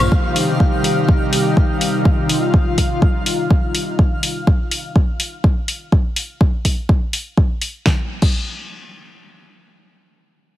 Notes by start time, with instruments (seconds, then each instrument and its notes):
Already playing: synth texture F5
0.12 analog synth pad C3 D#3 G3 D#4 G4, kick
0.36 open hi-hat
0.60 kick
0.84 open hi-hat
1.09 kick
1.33 open hi-hat
1.57 kick
1.81 open hi-hat
2.05 analog synth pad F4, kick
2.29 open hi-hat
2.54 kick
2.78 kick, open hi-hat
3.02 kick
3.26 open hi-hat
3.51 kick
3.75 open hi-hat
3.99 kick
4.23 open hi-hat
4.47 kick
4.71 open hi-hat
4.96 kick
5.20 open hi-hat
5.44 kick
5.68 open hi-hat
5.92 kick
6.16 open hi-hat
6.41 kick
6.65 kick, open hi-hat
6.89 kick
7.13 open hi-hat
7.37 kick
7.62 open hi-hat
7.86 kick, snare
8.22 kick, crash